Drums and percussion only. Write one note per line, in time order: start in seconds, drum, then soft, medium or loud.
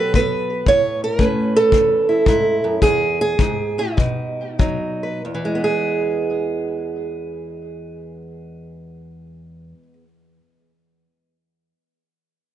0.14 kick medium
0.67 kick medium
1.19 kick medium
1.72 kick medium
2.26 kick medium
2.82 kick medium
3.39 kick medium
3.98 kick medium
4.59 kick medium